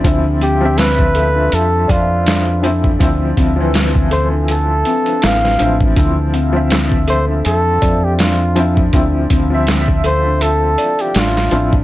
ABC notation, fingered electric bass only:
X:1
M:4/4
L:1/8
Q:"Swing 16ths" 1/4=81
K:Dm
V:1 name="Fingered electric bass" clef=bass
D,,4 F,, F,,3 | D,, D,,4 z A,,, A,,, | D,,4 F,, F,,3 | D,, D,,4 z A,,, A,,, |]